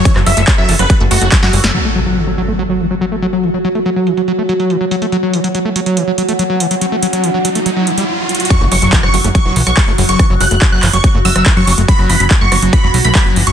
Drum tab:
HH |x---o-x-x---o-x-x---o-x-x---o-x-|--------x-----------x-x-x---x-x-|x---x-x-x---x-x-x---x-x-x---x-x-|x---x-x-x---x-x-x---x-x-x---x-x-|
CP |--x-----x---------------x-------|--------------------------------|--------------------------------|--------------------------------|
SD |--r-----------r---------o-o---o-|--------------------------------|--------------------------------|--------------------------------|
BD |o-------o-------o-------o-------|--------------------------------|--------------------------------|--------------------------------|

HH |x---x-x-x---x-x-x---x-x-----xxxx|----o-x-x---o-x-x---o-x-x---o-x-|x---o-x-x---o-x-x---o-x-x---o-x-|x---o-x-x---o-x-x---o-x-x---o-x-|
CP |--------------------------------|--------x---------------x-------|--------x---x-----------x-------|--------x---------------x-------|
SD |--------------------------------|r---------r-----------r---------|r-----------r---------r---------|--r---------r-----------r-------|
BD |--------------------------------|o-------o-------o-------o-------|o-------o-------o-------o-------|o-------o-------o-------o-------|